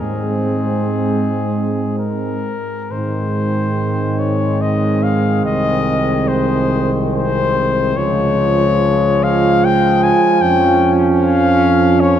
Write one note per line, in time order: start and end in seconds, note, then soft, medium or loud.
0.00 2.58 G#2 medium
0.00 2.58 G#3 soft
0.00 2.58 C4 medium
0.00 2.43 C4 medium
0.00 1.98 G#4 medium
1.99 2.93 A#4 medium
2.91 5.41 G#2 medium
2.91 8.00 D#3 medium
2.91 7.94 G#3 medium
2.91 7.93 C4 medium
2.91 4.21 C5 medium
4.19 4.63 C#5 medium
4.61 5.05 D#5 medium
5.03 5.45 F5 medium
5.44 7.94 C2 medium
5.44 6.29 D#5 loud
6.28 6.96 C5 medium
7.13 7.99 C5 loud
7.96 10.12 C#2 medium
7.96 12.20 F3 medium
7.96 10.37 G#3 medium
7.96 12.20 F4 medium
7.96 9.25 C#5 loud
9.23 9.66 F5 loud
9.65 10.05 G5 loud
10.03 10.43 G#5 loud
10.42 12.20 F2 medium
10.42 12.20 C#4 medium
10.42 10.94 G5 loud
11.20 12.02 F5 loud
12.00 12.20 C#5 loud